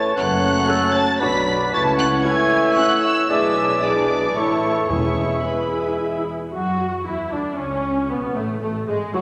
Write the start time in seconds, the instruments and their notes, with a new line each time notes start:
Already playing: bassoon E3, french horn section A3 E4, clarinet C#5, cor anglais C#5
0.15 double bass section F#1, cello section F#2, bassoon F#3, french horn section A3 C#4, clarinet B4, cor anglais C#5, violin section F#5 F#6, flute A5
0.68 viola section C#4 A4, clarinet A4
0.94 clarinet C#5, violin section A5 A6
1.20 double bass section B1, cello section B2, bassoon F#3, french horn section F#3 D4, viola section D4 F#4, clarinet B4, cor anglais D5, flute B5, violin section B5 B6
1.72 double bass section C#2, cello section C#3, bassoon E3, french horn section A3 E4, cor anglais C#5, violin section A5 A6, flute C#6
1.98 violin section F#5 F#6
2.24 viola section C#4 E4, clarinet E5, violin section G#5 G#6
2.76 viola section C#4 E4, violin section F#5 F#6
3.03 violin section E5 E6
3.29 double bass section B1, cello section B2, bassoon E3, french horn section G#3 E4, viola section D4 G#4, clarinet D5, cor anglais D5, violin section E5 E6, flute G#5
3.56 clarinet C#5
3.81 bassoon E3, french horn section G#3 E4, viola section D4 G#4, violin section D5 D6, cor anglais D5, clarinet D5, flute G#5
4.35 double bass section A1, cello section A2, bassoon E3, french horn section A3 E4, viola section E4 A4, violin section C#5 C#6, cor anglais C#5, clarinet E5, flute A5
4.89 double bass section E1, cello section E2, timpani E2, bassoon E3, french horn section G#3 E4, viola section E4 G#4, violin section C#5 C#6, clarinet E5, cor anglais E5, flute G#5
5.43 bassoon E3, french horn section G#3 E4, viola section E4 G#4, violin section B4 B5, cor anglais E5, flute G#5
6.51 double bass section F#2, cello section F#3, violin section F#4, viola section F#4
7.04 double bass section E2, cello section E3, violin section E4, viola section E4
7.31 double bass section D2, cello section D3, violin section D4, viola section D4
7.57 double bass section C#2, cello section C#3, violin section C#4, viola section C#4
8.09 double bass section B1, cello section B2, violin section B3, viola section B3
8.35 double bass section A1, cello section A2, violin section A3, viola section A3
8.61 double bass section A1, cello section A2, viola section A3, violin section A3
8.87 double bass section G#1, cello section G#2, viola section G#3, violin section G#3
9.14 double bass section F#1, cello section F#2, viola section F#3, violin section F#4